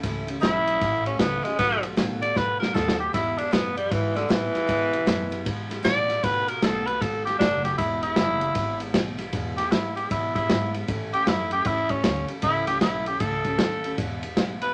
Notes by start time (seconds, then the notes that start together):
0.03 C#2 A2 E3 A3 C#4 E4, kick, snare, ride
0.27 A3 C#4 E4, ride
0.40 B1 A2 E3 A3 C#4 E4, snare, ride
0.66 A3 C#4 E4, ride
0.80 A1 E3 A3 C#4 E4, kick, snare, ride
1.06 A3 C#4 E4, ride
1.19 C#2 A2 E3 A3 B3 C#4 E4, kick, snare, ride
1.44 G#3 A3 C#4 E4, snare, ride
1.59 B1 B2 D#3 A3 B3 F#4, kick, snare, ride
1.83 A3 B3 F#4, ride
1.97 A1 B2 D#3 A3 B3 F#4, snare, ride
2.21 A3 B3 F#4 D5, ride
2.35 B1 D#3 A3 B3 F#4 B4, kick, snare
2.59 A3 B3 F#4 A#4, snare
2.74 D#2 B2 D#3 A3 B3 F#4 A4, kick, snare
2.88 snare
2.98 A3 B3 F#4 G4
3.13 E2 B2 E3 G#3 B3 E4, kick, snare, ride
3.38 E3 G#3 B3 D4 E4, ride
3.51 E2 F#2 B2 E3 G#3 B3 E4, snare, ride
3.76 E3 G3 G#3 B3 E4, ride
3.89 G#2 E3 G#3 B3 E4, kick, snare, ride
4.14 D3 E3 G#3 B3 E4, snare, ride
4.28 E2 A2 B2 E3 G#3 B3 E4, kick, snare, ride
4.54 E3 G#3 B3 E4, muted upright bass stroke, snare, ride
4.67 E2 B2 E3 G#3 B3 E4, kick, ride
4.92 E3 G#3 B3 E4, ride
5.06 E2 F#2 B2 E3 G#3 B3 E4, snare, ride
5.30 E3 G#3 B3 E4, ride
5.45 G#2 E3 G#3 B3 E4, kick, ride
5.69 E3 G#3 B3 E4, snare, ride
5.83 E2 A2 B2 E3 G#3 B3 E4 D5, kick, snare, ride
6.08 E3 G#3 B3 E4, snare, ride
6.23 B2 D#3 A3 B3 F#4 B4, kick, snare, ride
6.47 A3 B3 F#4 A#4, ride
6.62 B1 B2 D#3 A3 B3 F#4 A4, snare, ride
6.86 A3 B3 F#4 B4, ride
7.01 G#1 D#3 A3 B3 F#4 A4, kick, snare, ride
7.25 A3 B3 F#4 G4, snare, ride
7.39 F#1 B2 D#3 A3 B3 D4 F#4, kick, snare, ride
7.64 A3 B3 F#4 G4, snare, ride
7.78 E1 E2 B2 E3 G#3 B3 E4, kick, snare, ride
8.02 E3 G#3 B3 E4, ride
8.16 F#1 E2 B2 E3 G#3 B3 E4, snare, ride
8.41 E3 G#3 B3 E4, ride
8.55 G#1 E3 G#3 B3 E4, kick, snare, ride
8.80 E3 G#3 B3 E4, ride
8.94 B1 E2 B2 E3 G#3 B3 E4, kick, snare, ride
9.18 E3 G#3 B3 E4, snare, ride
9.32 E2 B2 E3 G#3 B3 E4, kick, ride
9.56 E3 G#3 B3 E4 G4, snare, ride
9.71 G#2 E3 G#3 B3 E4, snare, ride
9.95 E3 G#3 B3 E4 G4, ride
10.10 E2 B2 E3 G#3 B3 E4, kick, ride
10.35 E3 G#3 B3 E4, kick, ride
10.49 G#2 G#3 B3 E4, snare, ride
10.74 E3 G#3 B3 E4, ride
10.88 A2 E3 A3 C#4 E4, kick, ride
11.12 A3 C#4 E4 G4, muted upright bass stroke, ride
11.26 F#2 E3 A3 C#4 E4, snare, ride
11.51 A3 C#4 E4 G4, ride
11.65 E2 A2 E3 A3 C#4 E4, kick, ride
11.89 A3 C#4 E4, kick, ride
12.03 D2 E3 E4, snare, ride
12.28 A3 C#4 E4, ride
12.42 C#2 A2 E3 A3 C#4 E4, kick, ride
12.67 A3 C#4 E4 G4, snare, ride
12.81 B1 E3 A3 C#4 E4, snare, ride
13.06 A3 C#4 E4 G4, ride
13.20 C#2 A2 E3 A3 C#4 E4 A4, kick, ride
13.44 C#4 E4, kick, ride
13.49 A3
13.59 D#2 E3 A3 C#4 E4, snare, ride
13.84 A3 C#4 E4, ride
13.98 E2 B2 E3 G#3 B3 E4, kick, ride
14.23 E3 G#3 B3 E4, ride
14.37 B1 E3 G#3 B3 E4, snare, ride
14.62 E3 G#3 B3 E4 B4, ride